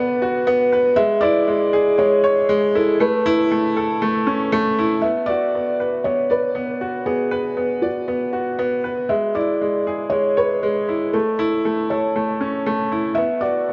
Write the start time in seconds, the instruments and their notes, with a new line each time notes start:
Already playing: upright piano B3 F#4 B4 D5, felt piano B4
0.22 upright piano F#4
0.47 upright piano B3
0.72 upright piano B4
0.96 upright piano G#3, felt piano E5
1.21 upright piano E4, felt piano D5
1.48 upright piano G#3
1.73 upright piano G#4
1.98 upright piano G#3, felt piano C#5
2.24 upright piano C#5
2.49 upright piano G#3
2.75 upright piano E4, felt piano A4
3.00 upright piano A3, felt piano B4
3.26 upright piano E4
3.51 upright piano A3
3.77 upright piano A4
4.02 upright piano A3
4.27 upright piano C#4
4.52 upright piano A3
4.79 upright piano E4
5.02 upright piano B3, felt piano E5
5.26 upright piano F#4, felt piano D5
5.55 upright piano B3
5.80 upright piano B4
6.04 upright piano B3, felt piano C#5
6.30 felt piano B4, upright piano D5
6.55 upright piano B3
6.81 upright piano F#4
7.06 upright piano B3, felt piano G#4
7.31 upright piano B4
7.57 upright piano B3
7.82 felt piano F#4, upright piano D5
8.08 upright piano B3
8.33 upright piano F#4
8.59 upright piano B3
8.84 upright piano B4
9.09 upright piano G#3, felt piano E5
9.35 upright piano E4, felt piano D5
9.61 upright piano G#3
9.87 upright piano G#4
10.10 upright piano G#3, felt piano C#5
10.37 felt piano B4, upright piano C#5
10.63 upright piano G#3
10.88 upright piano E4
11.13 upright piano A3, felt piano A4
11.39 upright piano E4
11.65 upright piano A3
11.90 upright piano A4, felt piano C#5
12.16 upright piano A3
12.41 upright piano C#4
12.66 upright piano A3
12.92 upright piano E4
13.15 upright piano B3, felt piano E5
13.41 upright piano F#4, felt piano D5
13.69 upright piano B3